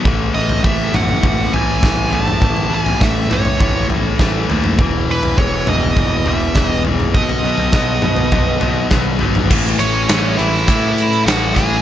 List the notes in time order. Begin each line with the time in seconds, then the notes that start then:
0.04 A1 A2 E3 A3, kick, floor tom
0.34 A1 A2 E3 A3 D#5
0.49 floor tom
0.63 A1 A2 E3 A3 E5, kick
0.92 A1 A2 E3 A3 C#4 F#5, floor tom, mid tom
1.09 floor tom
1.22 A1 A2 E3 A3 E4, kick, floor tom, mid tom
1.52 A1 A2 E3 A3 C#4 G#5, floor tom
1.80 A1 A2 E3 A3, kick, snare, floor tom
2.10 A2 E3 A3, floor tom
2.15 A5
2.28 mid tom
2.40 A1 A2 E3 A3, kick, floor tom
2.57 floor tom
2.69 A1 A2 E3 A3
2.75 G#5
2.86 floor tom
3.00 A1 A2 E3 A3, kick, snare
3.04 E5
3.27 A2 E3 A3 C#4, floor tom, mid tom
3.33 C#5
3.45 floor tom
3.58 A1 A2 E3 A3 E4, kick, floor tom, mid tom
3.87 A1 A2 E3 A3 C#4, floor tom
4.19 A1 A2 E3 A3, kick, snare
4.48 D#2 A2 E3 A3, floor tom
4.64 mid tom
4.79 E1 E2 B2 E3, kick, floor tom
5.06 E1 E2 B2
5.11 E3 B4
5.23 floor tom
5.37 E1 E2 B2 E3 G#3 C#5, kick
5.67 E1 E2 B2 E3 B3 D#5, floor tom, mid tom
5.82 floor tom
5.96 E1 E2 B2 E3 E4, kick, floor tom, mid tom
6.24 E1 E2 B2 E3 B3 E5, floor tom
6.55 E1 E2 B2 E3, kick, snare, floor tom
6.66 D#5
6.84 E2 B2 E3 G#3, floor tom
7.00 mid tom
7.14 B1 B2 F#3 B3 D#5, kick, floor tom
7.29 floor tom
7.43 B1 B2 F#3 B3
7.58 floor tom
7.72 B1 B2 F#3 B3, kick, snare
8.02 B2 F#3 B3, floor tom, mid tom
8.16 floor tom
8.32 B1 B2 F#3 B3 D#4, kick, floor tom, mid tom
8.60 B1 B2 F#3 B3, floor tom
8.90 B1 B2 D#3 F#3 B3, kick, snare
9.19 G#1 B2 F#3 B3, floor tom
9.35 mid tom
9.49 A1 A2 E3 A3, kick, crash
9.66 closed hi-hat
9.79 A1 C#4 C#5, closed hi-hat
10.09 A1 A2 E3 A3, snare, closed hi-hat
10.37 A1 A2 E3 A3 E4 E5, closed hi-hat
10.54 snare
10.67 A2 E3 A3, kick, closed hi-hat
10.98 closed hi-hat
11.13 closed hi-hat
11.26 A1 A2 E3 A3 F#4 F#5, snare, closed hi-hat
11.55 A2 E3 A3 G#4 G#5, kick, closed hi-hat